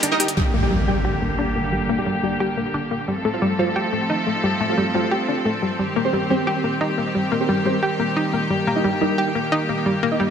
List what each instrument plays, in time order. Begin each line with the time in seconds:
Already playing: string section G3 A#3 D#4 G4
0.03 synth arpeggio sound D4, closed hi-hat
0.11 synth stab D#4 A#4 D#5
0.20 synth arpeggio sound G4, closed hi-hat
0.28 closed hi-hat
0.37 string section D3 G3 A#3 G4, synth arpeggio sound G3, impact
0.54 synth arpeggio sound A#3
0.62 synth stab G4 D5 G5
0.71 synth arpeggio sound G3
0.88 synth arpeggio sound G3, synth stab G4 D5 G5
1.05 synth arpeggio sound G4
1.22 synth arpeggio sound A#3
1.39 synth arpeggio sound D4
1.56 synth arpeggio sound A#3
1.72 synth arpeggio sound G3
1.89 synth arpeggio sound A#3
1.98 synth stab G4 D5 G5
2.06 synth arpeggio sound G3
2.23 synth arpeggio sound G3, synth stab G4 D5 G5
2.40 synth arpeggio sound G4
2.57 synth arpeggio sound A#3
2.74 synth arpeggio sound D4
2.91 synth arpeggio sound A#3
3.08 string section F3 A3 C4 A4, synth arpeggio sound G3
3.25 synth arpeggio sound A3
3.33 synth stab F4 C5 F5
3.42 synth arpeggio sound G3
3.59 synth arpeggio sound G3, synth stab F4 C5 F5
3.76 synth arpeggio sound G4
3.93 synth arpeggio sound A3
4.10 synth arpeggio sound D#4
4.27 synth arpeggio sound A3
4.44 synth arpeggio sound G3
4.61 synth arpeggio sound A3
4.69 synth stab F4 C5 F5
4.78 synth arpeggio sound G3
4.94 synth arpeggio sound G3, synth stab F4 C5 F5
5.11 synth arpeggio sound G4
5.28 synth arpeggio sound D4
5.45 synth arpeggio sound A3
5.62 synth arpeggio sound G3
5.79 string section D#3 G3 G4, synth arpeggio sound G3
5.96 synth arpeggio sound A#3
6.05 synth stab C4 G4 C5
6.13 synth arpeggio sound G3
6.30 synth arpeggio sound G3, synth stab C4 G4 C5
6.47 synth arpeggio sound G4
6.64 synth arpeggio sound A#3
6.81 synth arpeggio sound D#4
6.98 synth arpeggio sound A#3
7.15 synth arpeggio sound G3
7.32 synth arpeggio sound A#3
7.40 synth stab C4 G4 C5
7.49 synth arpeggio sound G3
7.66 synth arpeggio sound G3, synth stab C4 G4 C5
7.83 synth arpeggio sound G4
8.00 synth arpeggio sound A#3
8.17 synth arpeggio sound D#4
8.33 synth arpeggio sound A#3
8.50 synth arpeggio sound G3, string section A#3
8.67 synth arpeggio sound A#3
8.76 synth stab D#4 A#4 D#5
8.84 synth arpeggio sound G3
9.01 synth arpeggio sound G3, synth stab D#4 A#4 D#5
9.18 synth arpeggio sound G4
9.35 synth arpeggio sound A#3
9.52 synth arpeggio sound D#4
9.69 synth arpeggio sound A#3
9.86 synth arpeggio sound G3
10.03 synth arpeggio sound A#3
10.11 synth stab D#4 A#4 D#5
10.20 synth arpeggio sound G3